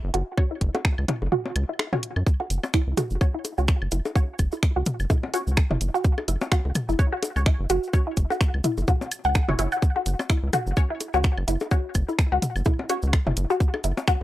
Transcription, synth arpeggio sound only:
0, 0, Header, 1, 2, 480
1, 0, Start_track
1, 0, Tempo, 472441
1, 382, Time_signature, 4, 2, 24, 8
1, 14461, End_track
2, 0, Start_track
2, 0, Title_t, "Synth arpeggio sound"
2, 0, Program_c, 0, 84
2, 140, Note_on_c, 0, 66, 103
2, 182, Note_off_c, 0, 66, 0
2, 518, Note_on_c, 0, 64, 77
2, 538, Note_off_c, 0, 64, 0
2, 758, Note_on_c, 0, 66, 101
2, 789, Note_off_c, 0, 66, 0
2, 1101, Note_on_c, 0, 64, 71
2, 1126, Note_off_c, 0, 64, 0
2, 1341, Note_on_c, 0, 66, 100
2, 1382, Note_off_c, 0, 66, 0
2, 1718, Note_on_c, 0, 64, 80
2, 1738, Note_off_c, 0, 64, 0
2, 1958, Note_on_c, 0, 66, 95
2, 1989, Note_off_c, 0, 66, 0
2, 2438, Note_on_c, 0, 66, 98
2, 2469, Note_off_c, 0, 66, 0
2, 2781, Note_on_c, 0, 64, 85
2, 2806, Note_off_c, 0, 64, 0
2, 3021, Note_on_c, 0, 66, 95
2, 3062, Note_off_c, 0, 66, 0
2, 3398, Note_on_c, 0, 64, 76
2, 3418, Note_off_c, 0, 64, 0
2, 3638, Note_on_c, 0, 66, 97
2, 3669, Note_off_c, 0, 66, 0
2, 3982, Note_on_c, 0, 64, 76
2, 4006, Note_off_c, 0, 64, 0
2, 4222, Note_on_c, 0, 66, 95
2, 4263, Note_off_c, 0, 66, 0
2, 4599, Note_on_c, 0, 64, 75
2, 4620, Note_off_c, 0, 64, 0
2, 4838, Note_on_c, 0, 66, 106
2, 4869, Note_off_c, 0, 66, 0
2, 5182, Note_on_c, 0, 64, 85
2, 5207, Note_off_c, 0, 64, 0
2, 5422, Note_on_c, 0, 66, 96
2, 5463, Note_off_c, 0, 66, 0
2, 5798, Note_on_c, 0, 64, 75
2, 5818, Note_off_c, 0, 64, 0
2, 6038, Note_on_c, 0, 66, 110
2, 6069, Note_off_c, 0, 66, 0
2, 6382, Note_on_c, 0, 64, 79
2, 6407, Note_off_c, 0, 64, 0
2, 6622, Note_on_c, 0, 66, 104
2, 6663, Note_off_c, 0, 66, 0
2, 6998, Note_on_c, 0, 64, 72
2, 7019, Note_off_c, 0, 64, 0
2, 7238, Note_on_c, 0, 66, 100
2, 7269, Note_off_c, 0, 66, 0
2, 7582, Note_on_c, 0, 64, 81
2, 7606, Note_off_c, 0, 64, 0
2, 7821, Note_on_c, 0, 66, 104
2, 7862, Note_off_c, 0, 66, 0
2, 8198, Note_on_c, 0, 64, 72
2, 8218, Note_off_c, 0, 64, 0
2, 8437, Note_on_c, 0, 66, 102
2, 8469, Note_off_c, 0, 66, 0
2, 8781, Note_on_c, 0, 64, 75
2, 8806, Note_off_c, 0, 64, 0
2, 9021, Note_on_c, 0, 66, 100
2, 9062, Note_off_c, 0, 66, 0
2, 9397, Note_on_c, 0, 78, 102
2, 9444, Note_off_c, 0, 78, 0
2, 9502, Note_on_c, 0, 78, 82
2, 9542, Note_off_c, 0, 78, 0
2, 9637, Note_on_c, 0, 64, 97
2, 9658, Note_off_c, 0, 64, 0
2, 9742, Note_on_c, 0, 64, 104
2, 9766, Note_off_c, 0, 64, 0
2, 9877, Note_on_c, 0, 78, 77
2, 9924, Note_off_c, 0, 78, 0
2, 10118, Note_on_c, 0, 66, 92
2, 10149, Note_off_c, 0, 66, 0
2, 10461, Note_on_c, 0, 64, 85
2, 10486, Note_off_c, 0, 64, 0
2, 10701, Note_on_c, 0, 66, 98
2, 10742, Note_off_c, 0, 66, 0
2, 11078, Note_on_c, 0, 64, 79
2, 11098, Note_off_c, 0, 64, 0
2, 11318, Note_on_c, 0, 66, 96
2, 11349, Note_off_c, 0, 66, 0
2, 11661, Note_on_c, 0, 64, 73
2, 11686, Note_off_c, 0, 64, 0
2, 11901, Note_on_c, 0, 66, 95
2, 11942, Note_off_c, 0, 66, 0
2, 12278, Note_on_c, 0, 64, 78
2, 12298, Note_off_c, 0, 64, 0
2, 12518, Note_on_c, 0, 66, 106
2, 12549, Note_off_c, 0, 66, 0
2, 12861, Note_on_c, 0, 64, 84
2, 12886, Note_off_c, 0, 64, 0
2, 13102, Note_on_c, 0, 66, 100
2, 13142, Note_off_c, 0, 66, 0
2, 13478, Note_on_c, 0, 64, 74
2, 13499, Note_off_c, 0, 64, 0
2, 13719, Note_on_c, 0, 66, 109
2, 13749, Note_off_c, 0, 66, 0
2, 14062, Note_on_c, 0, 64, 80
2, 14086, Note_off_c, 0, 64, 0
2, 14302, Note_on_c, 0, 66, 99
2, 14343, Note_off_c, 0, 66, 0
2, 14461, End_track
0, 0, End_of_file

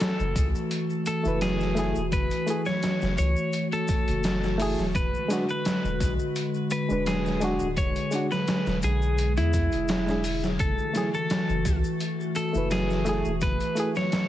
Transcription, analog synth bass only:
0, 0, Header, 1, 2, 480
1, 0, Start_track
1, 0, Key_signature, 3, "minor"
1, 0, Tempo, 705882
1, 1443, Time_signature, 4, 2, 24, 8
1, 9712, End_track
2, 0, Start_track
2, 0, Title_t, "Analog synth bass"
2, 0, Program_c, 0, 38
2, 131, Note_on_c, 0, 30, 91
2, 229, Note_off_c, 0, 30, 0
2, 243, Note_on_c, 0, 37, 97
2, 356, Note_off_c, 0, 37, 0
2, 849, Note_on_c, 0, 30, 79
2, 1306, Note_off_c, 0, 30, 0
2, 1332, Note_on_c, 0, 28, 87
2, 1430, Note_off_c, 0, 28, 0
2, 1444, Note_on_c, 0, 30, 104
2, 1556, Note_off_c, 0, 30, 0
2, 2055, Note_on_c, 0, 30, 87
2, 2151, Note_off_c, 0, 30, 0
2, 2165, Note_on_c, 0, 37, 96
2, 2277, Note_off_c, 0, 37, 0
2, 2772, Note_on_c, 0, 30, 78
2, 3227, Note_off_c, 0, 30, 0
2, 3252, Note_on_c, 0, 28, 82
2, 3350, Note_off_c, 0, 28, 0
2, 3364, Note_on_c, 0, 28, 109
2, 3477, Note_off_c, 0, 28, 0
2, 3970, Note_on_c, 0, 28, 93
2, 4069, Note_off_c, 0, 28, 0
2, 4084, Note_on_c, 0, 35, 97
2, 4196, Note_off_c, 0, 35, 0
2, 4693, Note_on_c, 0, 28, 85
2, 5148, Note_off_c, 0, 28, 0
2, 5173, Note_on_c, 0, 26, 88
2, 5270, Note_off_c, 0, 26, 0
2, 5283, Note_on_c, 0, 28, 109
2, 5396, Note_off_c, 0, 28, 0
2, 5891, Note_on_c, 0, 28, 90
2, 5990, Note_off_c, 0, 28, 0
2, 6005, Note_on_c, 0, 35, 91
2, 6374, Note_on_c, 0, 40, 99
2, 6384, Note_off_c, 0, 35, 0
2, 6582, Note_off_c, 0, 40, 0
2, 6612, Note_on_c, 0, 28, 95
2, 7182, Note_off_c, 0, 28, 0
2, 7205, Note_on_c, 0, 30, 100
2, 7317, Note_off_c, 0, 30, 0
2, 7813, Note_on_c, 0, 30, 90
2, 7911, Note_off_c, 0, 30, 0
2, 7924, Note_on_c, 0, 37, 94
2, 8037, Note_off_c, 0, 37, 0
2, 8531, Note_on_c, 0, 30, 83
2, 8987, Note_off_c, 0, 30, 0
2, 9012, Note_on_c, 0, 28, 89
2, 9110, Note_off_c, 0, 28, 0
2, 9124, Note_on_c, 0, 30, 107
2, 9236, Note_off_c, 0, 30, 0
2, 9712, End_track
0, 0, End_of_file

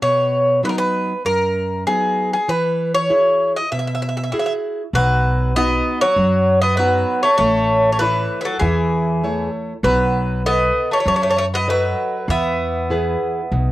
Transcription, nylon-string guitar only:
0, 0, Header, 1, 2, 480
1, 0, Start_track
1, 0, Tempo, 613497
1, 17, Time_signature, 4, 2, 24, 8
1, 10733, End_track
2, 0, Start_track
2, 0, Title_t, "Nylon-string guitar"
2, 0, Program_c, 0, 24
2, 16, Note_on_c, 0, 47, 65
2, 483, Note_off_c, 0, 47, 0
2, 495, Note_on_c, 0, 54, 50
2, 499, Note_on_c, 0, 59, 44
2, 503, Note_on_c, 0, 63, 54
2, 881, Note_off_c, 0, 54, 0
2, 883, Note_off_c, 0, 59, 0
2, 884, Note_off_c, 0, 63, 0
2, 977, Note_on_c, 0, 42, 62
2, 1444, Note_off_c, 0, 42, 0
2, 1461, Note_on_c, 0, 54, 45
2, 1464, Note_on_c, 0, 59, 43
2, 1469, Note_on_c, 0, 63, 52
2, 1845, Note_off_c, 0, 54, 0
2, 1846, Note_off_c, 0, 59, 0
2, 1849, Note_off_c, 0, 63, 0
2, 1943, Note_on_c, 0, 52, 60
2, 2407, Note_off_c, 0, 52, 0
2, 2423, Note_on_c, 0, 66, 39
2, 2427, Note_on_c, 0, 64, 47
2, 2429, Note_on_c, 0, 68, 50
2, 2807, Note_off_c, 0, 64, 0
2, 2807, Note_off_c, 0, 66, 0
2, 2810, Note_off_c, 0, 68, 0
2, 2912, Note_on_c, 0, 47, 55
2, 3372, Note_off_c, 0, 47, 0
2, 3389, Note_on_c, 0, 66, 39
2, 3391, Note_on_c, 0, 64, 45
2, 3392, Note_on_c, 0, 68, 47
2, 3769, Note_off_c, 0, 64, 0
2, 3770, Note_off_c, 0, 66, 0
2, 3772, Note_off_c, 0, 68, 0
2, 3864, Note_on_c, 0, 47, 66
2, 4328, Note_off_c, 0, 47, 0
2, 4352, Note_on_c, 0, 59, 52
2, 4356, Note_on_c, 0, 63, 47
2, 4362, Note_on_c, 0, 66, 55
2, 4731, Note_off_c, 0, 59, 0
2, 4735, Note_off_c, 0, 63, 0
2, 4736, Note_off_c, 0, 66, 0
2, 4833, Note_on_c, 0, 54, 64
2, 5292, Note_off_c, 0, 54, 0
2, 5304, Note_on_c, 0, 59, 48
2, 5309, Note_on_c, 0, 63, 45
2, 5318, Note_on_c, 0, 66, 55
2, 5687, Note_off_c, 0, 59, 0
2, 5690, Note_off_c, 0, 63, 0
2, 5695, Note_off_c, 0, 66, 0
2, 5797, Note_on_c, 0, 57, 69
2, 6255, Note_off_c, 0, 57, 0
2, 6268, Note_on_c, 0, 64, 49
2, 6275, Note_on_c, 0, 69, 45
2, 6279, Note_on_c, 0, 73, 54
2, 6649, Note_off_c, 0, 64, 0
2, 6653, Note_off_c, 0, 69, 0
2, 6655, Note_off_c, 0, 73, 0
2, 6746, Note_on_c, 0, 52, 65
2, 7209, Note_off_c, 0, 52, 0
2, 7225, Note_on_c, 0, 64, 49
2, 7228, Note_on_c, 0, 57, 41
2, 7231, Note_on_c, 0, 73, 58
2, 7607, Note_off_c, 0, 64, 0
2, 7610, Note_off_c, 0, 57, 0
2, 7610, Note_off_c, 0, 73, 0
2, 7701, Note_on_c, 0, 59, 69
2, 8167, Note_off_c, 0, 59, 0
2, 8187, Note_on_c, 0, 69, 50
2, 8191, Note_on_c, 0, 71, 47
2, 8196, Note_on_c, 0, 75, 55
2, 8569, Note_off_c, 0, 69, 0
2, 8571, Note_off_c, 0, 71, 0
2, 8574, Note_off_c, 0, 75, 0
2, 8669, Note_on_c, 0, 54, 71
2, 9131, Note_off_c, 0, 54, 0
2, 9136, Note_on_c, 0, 69, 51
2, 9140, Note_on_c, 0, 75, 50
2, 9141, Note_on_c, 0, 71, 43
2, 9523, Note_off_c, 0, 69, 0
2, 9524, Note_off_c, 0, 75, 0
2, 9525, Note_off_c, 0, 71, 0
2, 9619, Note_on_c, 0, 52, 59
2, 10086, Note_off_c, 0, 52, 0
2, 10095, Note_on_c, 0, 64, 50
2, 10101, Note_on_c, 0, 68, 46
2, 10102, Note_on_c, 0, 71, 57
2, 10483, Note_off_c, 0, 64, 0
2, 10484, Note_off_c, 0, 68, 0
2, 10486, Note_off_c, 0, 71, 0
2, 10579, Note_on_c, 0, 47, 65
2, 10733, Note_off_c, 0, 47, 0
2, 10733, End_track
0, 0, End_of_file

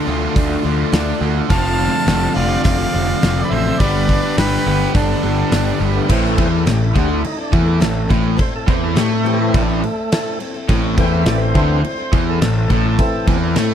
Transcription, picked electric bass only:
0, 0, Header, 1, 3, 480
1, 0, Start_track
1, 0, Key_signature, 0, "minor"
1, 0, Tempo, 574163
1, 1262, Time_signature, 4, 2, 24, 8
1, 11487, End_track
2, 0, Start_track
2, 0, Title_t, "Picked electric bass"
2, 0, Program_c, 0, 34
2, 64, Note_on_c, 0, 38, 96
2, 220, Note_off_c, 0, 38, 0
2, 302, Note_on_c, 0, 38, 88
2, 459, Note_off_c, 0, 38, 0
2, 541, Note_on_c, 0, 38, 83
2, 698, Note_off_c, 0, 38, 0
2, 776, Note_on_c, 0, 38, 93
2, 934, Note_off_c, 0, 38, 0
2, 1013, Note_on_c, 0, 38, 90
2, 1172, Note_off_c, 0, 38, 0
2, 1253, Note_on_c, 0, 29, 91
2, 1569, Note_off_c, 0, 29, 0
2, 1731, Note_on_c, 0, 29, 99
2, 1891, Note_off_c, 0, 29, 0
2, 1976, Note_on_c, 0, 29, 99
2, 2134, Note_off_c, 0, 29, 0
2, 2215, Note_on_c, 0, 29, 92
2, 2373, Note_off_c, 0, 29, 0
2, 2461, Note_on_c, 0, 29, 85
2, 2617, Note_off_c, 0, 29, 0
2, 2700, Note_on_c, 0, 29, 82
2, 2857, Note_off_c, 0, 29, 0
2, 2939, Note_on_c, 0, 33, 92
2, 3096, Note_off_c, 0, 33, 0
2, 3176, Note_on_c, 0, 31, 97
2, 3490, Note_off_c, 0, 31, 0
2, 3659, Note_on_c, 0, 31, 82
2, 3815, Note_off_c, 0, 31, 0
2, 3900, Note_on_c, 0, 31, 101
2, 4056, Note_off_c, 0, 31, 0
2, 4136, Note_on_c, 0, 31, 83
2, 4293, Note_off_c, 0, 31, 0
2, 4378, Note_on_c, 0, 31, 86
2, 4535, Note_off_c, 0, 31, 0
2, 4612, Note_on_c, 0, 31, 79
2, 4771, Note_off_c, 0, 31, 0
2, 4849, Note_on_c, 0, 31, 93
2, 5009, Note_off_c, 0, 31, 0
2, 5097, Note_on_c, 0, 33, 88
2, 5321, Note_off_c, 0, 33, 0
2, 5332, Note_on_c, 0, 40, 98
2, 5558, Note_off_c, 0, 40, 0
2, 5575, Note_on_c, 0, 33, 75
2, 5799, Note_off_c, 0, 33, 0
2, 5813, Note_on_c, 0, 38, 108
2, 6038, Note_off_c, 0, 38, 0
2, 6292, Note_on_c, 0, 40, 100
2, 6518, Note_off_c, 0, 40, 0
2, 6533, Note_on_c, 0, 33, 82
2, 6758, Note_off_c, 0, 33, 0
2, 6775, Note_on_c, 0, 33, 100
2, 6999, Note_off_c, 0, 33, 0
2, 7255, Note_on_c, 0, 40, 85
2, 7480, Note_off_c, 0, 40, 0
2, 7487, Note_on_c, 0, 45, 88
2, 7939, Note_off_c, 0, 45, 0
2, 7979, Note_on_c, 0, 33, 94
2, 8202, Note_off_c, 0, 33, 0
2, 8937, Note_on_c, 0, 33, 90
2, 9161, Note_off_c, 0, 33, 0
2, 9175, Note_on_c, 0, 40, 98
2, 9400, Note_off_c, 0, 40, 0
2, 9412, Note_on_c, 0, 33, 87
2, 9638, Note_off_c, 0, 33, 0
2, 9657, Note_on_c, 0, 38, 98
2, 9881, Note_off_c, 0, 38, 0
2, 10136, Note_on_c, 0, 40, 106
2, 10361, Note_off_c, 0, 40, 0
2, 10381, Note_on_c, 0, 33, 78
2, 10603, Note_off_c, 0, 33, 0
2, 10618, Note_on_c, 0, 33, 86
2, 10842, Note_off_c, 0, 33, 0
2, 11097, Note_on_c, 0, 40, 89
2, 11321, Note_off_c, 0, 40, 0
2, 11341, Note_on_c, 0, 45, 98
2, 11487, Note_off_c, 0, 45, 0
2, 11487, End_track
3, 0, Start_track
3, 0, Title_t, "Muted picked electric bass strokes"
3, 6051, Note_on_c, 9, 29, 38
3, 6135, Note_off_c, 9, 29, 0
3, 7014, Note_on_c, 9, 29, 36
3, 7098, Note_off_c, 9, 29, 0
3, 9892, Note_on_c, 9, 29, 39
3, 9975, Note_off_c, 9, 29, 0
3, 10858, Note_on_c, 9, 29, 41
3, 10941, Note_off_c, 9, 29, 0
3, 11487, End_track
0, 0, End_of_file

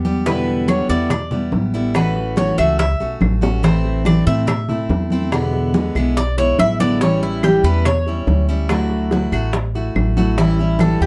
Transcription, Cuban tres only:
0, 0, Header, 1, 2, 480
1, 0, Start_track
1, 0, Tempo, 421644
1, 297, Time_signature, 4, 2, 24, 8
1, 12594, End_track
2, 0, Start_track
2, 0, Title_t, "Cuban tres"
2, 0, Program_c, 0, 25
2, 297, Note_on_c, 0, 71, 68
2, 744, Note_off_c, 0, 71, 0
2, 779, Note_on_c, 0, 73, 70
2, 1012, Note_off_c, 0, 73, 0
2, 1018, Note_on_c, 0, 74, 81
2, 1246, Note_off_c, 0, 74, 0
2, 1259, Note_on_c, 0, 74, 76
2, 1707, Note_off_c, 0, 74, 0
2, 2229, Note_on_c, 0, 71, 66
2, 2672, Note_off_c, 0, 71, 0
2, 2704, Note_on_c, 0, 73, 73
2, 2934, Note_off_c, 0, 73, 0
2, 2938, Note_on_c, 0, 76, 88
2, 3163, Note_off_c, 0, 76, 0
2, 3177, Note_on_c, 0, 76, 93
2, 3626, Note_off_c, 0, 76, 0
2, 4142, Note_on_c, 0, 72, 67
2, 4589, Note_off_c, 0, 72, 0
2, 4622, Note_on_c, 0, 74, 76
2, 4854, Note_off_c, 0, 74, 0
2, 4859, Note_on_c, 0, 76, 90
2, 5081, Note_off_c, 0, 76, 0
2, 5095, Note_on_c, 0, 76, 74
2, 5545, Note_off_c, 0, 76, 0
2, 7024, Note_on_c, 0, 74, 93
2, 7256, Note_off_c, 0, 74, 0
2, 7264, Note_on_c, 0, 73, 96
2, 7496, Note_off_c, 0, 73, 0
2, 7506, Note_on_c, 0, 76, 97
2, 7737, Note_off_c, 0, 76, 0
2, 7743, Note_on_c, 0, 74, 98
2, 7975, Note_off_c, 0, 74, 0
2, 7984, Note_on_c, 0, 73, 75
2, 8215, Note_off_c, 0, 73, 0
2, 8228, Note_on_c, 0, 64, 60
2, 8458, Note_off_c, 0, 64, 0
2, 8467, Note_on_c, 0, 67, 76
2, 8697, Note_off_c, 0, 67, 0
2, 8701, Note_on_c, 0, 71, 87
2, 8934, Note_off_c, 0, 71, 0
2, 8945, Note_on_c, 0, 73, 85
2, 9616, Note_off_c, 0, 73, 0
2, 11817, Note_on_c, 0, 64, 73
2, 12283, Note_off_c, 0, 64, 0
2, 12302, Note_on_c, 0, 69, 62
2, 12532, Note_off_c, 0, 69, 0
2, 12543, Note_on_c, 0, 67, 67
2, 12594, Note_off_c, 0, 67, 0
2, 12594, End_track
0, 0, End_of_file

